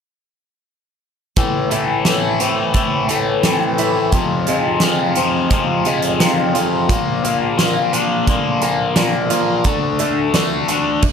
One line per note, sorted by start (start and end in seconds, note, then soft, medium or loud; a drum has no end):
1.36 3.10 A2 medium
1.36 1.69 A2 medium
1.36 1.70 E3 medium
1.36 1.70 A3 medium
1.36 kick medium
1.36 closed hi-hat medium
1.70 2.05 A2 medium
1.70 2.05 E3 medium
1.70 2.05 A3 medium
1.70 3.09 A3 medium
1.70 closed hi-hat soft
2.05 2.39 A2 medium
2.05 2.39 E3 medium
2.05 2.40 A3 medium
2.05 3.78 E4 medium
2.05 snare medium
2.05 closed hi-hat soft
2.40 2.72 A2 medium
2.40 2.73 E3 medium
2.40 2.73 A3 medium
2.40 3.44 C4 medium
2.40 closed hi-hat medium
2.73 3.07 A2 medium
2.73 3.07 E3 medium
2.73 4.14 E3 medium
2.73 3.08 A3 medium
2.73 kick medium
2.73 closed hi-hat soft
3.08 3.42 A2 medium
3.08 3.43 E3 medium
3.08 3.43 A3 medium
3.08 4.14 A3 medium
3.08 closed hi-hat soft
3.43 3.78 A2 medium
3.43 3.78 E3 medium
3.43 3.78 A3 medium
3.43 4.14 C4 medium
3.43 snare medium
3.43 closed hi-hat soft
3.78 4.12 A2 medium
3.78 4.12 E3 medium
3.78 4.12 A3 medium
3.78 4.14 E4 medium
3.78 closed hi-hat soft
4.12 4.47 F2 medium
4.12 5.86 F2 medium
4.12 4.47 C3 medium
4.12 4.48 F3 medium
4.12 kick medium
4.12 closed hi-hat medium
4.47 4.81 F2 medium
4.47 4.81 C3 medium
4.47 4.82 F3 medium
4.47 5.85 G#3 medium
4.47 closed hi-hat soft
4.80 5.16 F2 medium
4.80 5.16 C3 medium
4.80 5.17 F3 medium
4.80 6.54 F4 medium
4.80 snare medium
4.80 closed hi-hat soft
5.16 5.49 F2 medium
5.16 5.50 C3 medium
5.16 5.50 F3 medium
5.16 6.20 C4 medium
5.16 closed hi-hat soft
5.50 5.84 F2 medium
5.50 5.85 C3 medium
5.50 5.85 F3 medium
5.50 6.90 F3 medium
5.50 kick medium
5.50 closed hi-hat soft
5.85 6.18 F2 medium
5.85 6.19 C3 medium
5.85 6.19 F3 medium
5.85 6.90 G#3 medium
5.85 closed hi-hat soft
6.02 closed hi-hat soft
6.19 6.53 F2 medium
6.19 6.53 C3 medium
6.19 6.54 F3 medium
6.19 6.90 C4 medium
6.19 snare medium
6.19 closed hi-hat soft
6.54 6.87 F2 medium
6.54 6.88 C3 medium
6.54 6.88 F3 medium
6.54 6.90 F4 medium
6.54 closed hi-hat soft
6.89 7.22 A#2 medium
6.89 8.63 A#2 medium
6.89 7.23 F3 medium
6.89 7.23 A#3 medium
6.89 kick medium
6.89 closed hi-hat medium
7.24 7.56 A#2 medium
7.24 7.57 F3 medium
7.24 7.57 A#3 medium
7.24 8.61 A#3 medium
7.24 closed hi-hat soft
7.58 7.91 A#2 medium
7.58 7.92 F3 medium
7.58 7.92 A#3 medium
7.58 9.29 F4 medium
7.58 snare medium
7.58 closed hi-hat soft
7.92 8.27 A#2 medium
7.92 8.27 F3 medium
7.92 8.27 A#3 medium
7.92 8.95 D4 medium
7.92 closed hi-hat medium
8.27 8.61 A#2 medium
8.27 9.64 D3 medium
8.27 8.61 F3 medium
8.27 8.62 A#3 medium
8.27 kick medium
8.27 closed hi-hat medium
8.62 8.94 A#2 medium
8.62 8.95 F3 medium
8.62 9.66 A#3 medium
8.62 8.95 A#3 medium
8.62 closed hi-hat soft
8.96 9.30 A#2 medium
8.96 9.30 F3 medium
8.96 9.31 A#3 medium
8.96 9.66 D4 medium
8.96 snare medium
8.96 closed hi-hat soft
9.30 9.64 A#2 medium
9.30 9.64 F3 medium
9.30 9.64 A#3 medium
9.30 9.65 F4 medium
9.30 closed hi-hat medium
9.64 11.04 D3 medium
9.64 9.98 D3 medium
9.64 9.99 A3 medium
9.64 9.99 D4 medium
9.64 kick medium
9.64 closed hi-hat medium
9.99 10.33 D3 medium
9.99 11.03 A3 medium
9.99 10.33 A3 medium
9.99 10.33 D4 medium
9.99 closed hi-hat soft
10.34 10.67 D3 medium
10.34 10.68 A3 medium
10.34 10.68 D4 medium
10.34 11.04 F#4 medium
10.34 snare medium
10.34 closed hi-hat soft
10.68 11.01 D3 medium
10.68 11.02 A3 medium
10.68 11.04 D4 medium
10.68 11.02 D4 medium
10.68 closed hi-hat medium
11.02 kick medium
11.02 crash medium